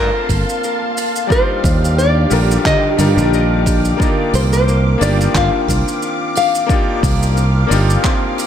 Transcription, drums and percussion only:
0.29 kick medium
0.29 open hi-hat loud
0.29 shaker medium
0.49 shaker medium
0.64 shaker medium
0.97 open hi-hat medium
0.97 shaker medium
1.16 shaker medium
1.30 kick loud
1.30 shaker medium
1.63 kick loud
1.63 open hi-hat medium
1.63 shaker medium
1.85 shaker medium
1.99 shaker medium
2.31 open hi-hat medium
2.31 shaker medium
2.51 shaker medium
2.65 kick loud
2.65 clap medium
2.65 shaker medium
2.98 open hi-hat medium
2.98 shaker medium
3.18 shaker medium
3.34 shaker soft
3.66 kick medium
3.66 open hi-hat medium
3.66 shaker medium
3.85 shaker medium
4.00 kick loud
4.00 shaker soft
4.33 open hi-hat medium
4.33 shaker medium
4.53 shaker medium
4.69 shaker soft
5.01 open hi-hat medium
5.01 shaker medium
5.21 shaker medium
5.35 kick loud
5.35 clap medium
5.35 shaker medium
5.68 kick medium
5.68 open hi-hat medium
5.68 shaker medium
5.88 shaker medium
6.02 shaker soft
6.35 open hi-hat medium
6.35 shaker medium
6.55 shaker medium
6.69 kick loud
6.69 shaker medium
7.03 kick loud
7.03 open hi-hat loud
7.03 shaker medium
7.23 shaker medium
7.37 shaker soft
7.71 open hi-hat medium
7.71 shaker medium
7.90 shaker medium
8.04 kick loud
8.04 clap medium
8.04 shaker soft
8.38 open hi-hat medium
8.38 shaker medium

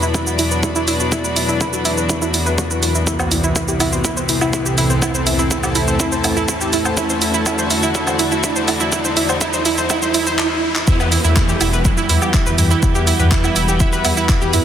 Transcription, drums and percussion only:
0.03 shaker soft
0.14 kick loud
0.14 mid tom medium
0.14 shaker medium
0.27 shaker soft
0.39 open hi-hat loud
0.39 shaker medium
0.51 shaker soft
0.63 kick loud
0.63 mid tom medium
0.63 shaker medium
0.76 shaker soft
0.88 mid tom medium
0.88 open hi-hat loud
0.88 shaker medium
1.00 shaker soft
1.12 kick loud
1.12 mid tom medium
1.12 shaker medium
1.24 shaker soft
1.36 open hi-hat loud
1.36 shaker soft
1.49 mid tom medium
1.49 shaker soft
1.61 kick loud
1.61 mid tom medium
1.61 shaker medium
1.73 shaker soft
1.85 open hi-hat loud
1.85 shaker medium
1.98 shaker soft
2.09 kick loud
2.09 mid tom medium
2.09 shaker medium
2.22 shaker soft
2.34 open hi-hat loud
2.34 shaker medium
2.46 shaker soft
2.58 kick loud
2.58 mid tom medium
2.58 shaker medium
2.71 shaker soft
2.83 mid tom medium
2.83 open hi-hat loud
2.83 shaker medium
2.95 shaker soft
3.07 kick loud
3.07 mid tom medium
3.07 shaker medium
3.19 low woodblock medium
3.19 shaker soft
3.31 open hi-hat loud
3.31 mid tom medium
3.31 shaker soft
3.44 shaker soft
3.56 kick loud
3.56 shaker medium
3.68 shaker soft
3.80 open hi-hat medium
3.80 mid tom medium
3.80 low woodblock medium
3.80 shaker medium
3.93 shaker soft
4.04 kick loud
4.04 mid tom medium
4.04 shaker medium
4.17 shaker soft
4.29 open hi-hat loud
4.29 mid tom medium
4.29 shaker medium
4.41 low woodblock medium
4.41 shaker soft
4.53 kick loud
4.53 mid tom medium
4.53 shaker medium
4.66 shaker soft
4.78 mid tom loud
4.78 open hi-hat medium
4.78 mid tom medium
4.78 shaker medium
4.90 shaker soft
5.02 kick loud
5.02 mid tom medium
5.02 low woodblock medium
5.02 shaker medium
5.15 shaker soft
5.27 open hi-hat loud
5.27 mid tom medium
5.27 shaker medium
5.39 mid tom medium
5.39 shaker soft
5.51 kick loud
5.51 mid tom medium
5.51 shaker medium
5.63 low woodblock medium
5.63 shaker soft
5.75 open hi-hat medium
5.75 mid tom medium
5.75 shaker medium
5.88 shaker soft
6.00 kick loud
6.00 mid tom medium
6.00 shaker medium
6.12 shaker soft
6.24 open hi-hat loud
6.24 mid tom medium
6.24 low woodblock medium
6.24 shaker medium
6.37 shaker soft
6.48 kick loud
6.48 mid tom medium
6.48 shaker medium
6.61 shaker soft
6.73 mid tom loud
6.73 open hi-hat medium
6.73 mid tom loud
6.73 shaker medium
6.85 low woodblock medium
6.85 shaker soft
6.97 kick loud
6.97 mid tom medium
6.97 shaker medium
7.10 mid tom medium
7.10 shaker soft
7.22 open hi-hat loud
7.22 mid tom medium
7.22 shaker medium
7.34 mid tom medium
7.34 shaker soft
7.46 kick loud
7.46 mid tom loud
7.46 low woodblock medium
7.46 shaker medium
7.58 mid tom medium
7.58 shaker soft
7.70 open hi-hat medium
7.70 mid tom medium
7.70 shaker medium
7.83 mid tom medium
7.83 shaker soft
7.95 kick loud
7.95 mid tom medium
7.95 mid tom loud
7.95 shaker medium
8.07 mid tom medium
8.07 low woodblock soft
8.07 shaker soft
8.19 open hi-hat loud
8.19 mid tom loud
8.19 shaker medium
8.32 mid tom medium
8.32 shaker soft
8.44 kick loud
8.44 mid tom loud
8.44 shaker medium
8.56 mid tom medium
8.56 shaker soft
8.68 mid tom loud
8.68 open hi-hat medium
8.68 mid tom loud
8.68 low woodblock medium
8.68 shaker medium
8.80 mid tom medium
8.80 shaker soft
8.92 kick loud
8.92 mid tom loud
8.92 shaker medium
9.05 mid tom loud
9.05 shaker soft
9.17 open hi-hat loud
9.17 mid tom loud
9.17 shaker medium
9.29 mid tom medium
9.29 low woodblock soft
9.29 shaker soft
9.41 kick loud
9.41 mid tom loud
9.41 shaker medium
9.53 mid tom loud
9.53 shaker soft
9.65 open hi-hat medium
9.65 mid tom loud
9.65 shaker medium
9.78 mid tom medium
9.78 shaker soft
9.90 kick loud
9.90 mid tom loud
9.90 low woodblock medium
9.90 shaker medium
10.02 mid tom medium
10.02 shaker soft
10.14 open hi-hat loud
10.14 mid tom loud
10.14 shaker medium
10.27 mid tom medium
10.27 shaker soft
10.39 clap loud
10.75 clap medium
10.88 kick loud
10.88 shaker medium
11.00 low woodblock medium
11.00 shaker soft
11.12 open hi-hat loud
11.12 shaker medium
11.24 shaker soft
11.36 kick loud
11.36 clap loud
11.36 shaker medium
11.49 shaker soft
11.61 open hi-hat medium
11.61 low woodblock medium
11.61 shaker medium
11.73 shaker soft
11.85 kick loud
11.85 mid tom medium
11.85 shaker medium
11.97 shaker soft
12.09 open hi-hat loud
12.09 shaker medium
12.22 low woodblock medium
12.22 shaker soft
12.34 kick loud
12.34 clap loud
12.34 shaker medium
12.46 shaker soft
12.58 mid tom loud
12.58 open hi-hat medium
12.58 shaker medium
12.71 shaker soft
12.83 kick loud
12.83 low woodblock medium
12.83 shaker medium
12.95 shaker soft
13.07 open hi-hat loud
13.07 shaker medium
13.20 mid tom medium
13.20 shaker soft
13.31 kick loud
13.31 clap loud
13.31 shaker medium
13.44 low woodblock medium
13.44 shaker soft
13.56 open hi-hat loud
13.56 shaker medium
13.68 shaker soft
13.80 kick loud
13.80 shaker medium
13.93 shaker soft
14.05 open hi-hat loud
14.05 low woodblock soft
14.05 shaker medium
14.17 shaker soft
14.29 kick loud
14.29 clap loud
14.29 shaker medium
14.41 shaker soft
14.53 mid tom medium
14.53 open hi-hat loud
14.53 shaker medium

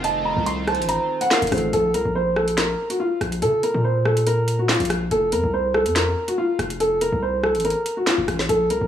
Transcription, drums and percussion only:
0.04 closed hi-hat medium
0.46 closed hi-hat medium
0.68 cross-stick loud
0.68 closed hi-hat soft
0.75 closed hi-hat medium
0.82 closed hi-hat medium
0.89 closed hi-hat medium
1.21 closed hi-hat medium
1.31 snare loud
1.31 clap loud
1.42 closed hi-hat medium
1.47 closed hi-hat medium
1.52 cross-stick loud
1.52 closed hi-hat medium
1.52 open hi-hat medium
1.58 closed hi-hat medium
1.73 closed hi-hat medium
1.94 closed hi-hat medium
2.36 cross-stick loud
2.48 closed hi-hat medium
2.58 snare loud
2.58 clap medium
2.58 closed hi-hat medium
2.90 closed hi-hat medium
3.21 cross-stick loud
3.21 closed hi-hat medium
3.32 closed hi-hat medium
3.42 closed hi-hat medium
3.63 closed hi-hat medium
4.05 cross-stick medium
4.17 closed hi-hat medium
4.27 closed hi-hat medium
4.48 closed hi-hat medium
4.69 snare loud
4.69 clap medium
4.69 closed hi-hat soft
4.75 closed hi-hat medium
4.80 closed hi-hat medium
4.85 closed hi-hat medium
4.90 cross-stick loud
4.90 closed hi-hat medium
5.11 closed hi-hat medium
5.32 closed hi-hat medium
5.74 cross-stick loud
5.86 closed hi-hat medium
5.96 snare loud
5.96 clap medium
5.96 closed hi-hat medium
6.28 closed hi-hat medium
6.59 cross-stick loud
6.59 closed hi-hat medium
6.70 closed hi-hat medium
6.80 closed hi-hat medium
7.01 closed hi-hat medium
7.44 cross-stick medium
7.55 closed hi-hat soft
7.60 closed hi-hat medium
7.65 closed hi-hat medium
7.70 closed hi-hat medium
7.86 closed hi-hat medium
8.07 snare loud
8.07 clap medium
8.07 closed hi-hat medium
8.28 cross-stick loud
8.28 closed hi-hat medium
8.39 snare medium
8.49 closed hi-hat medium
8.70 closed hi-hat medium

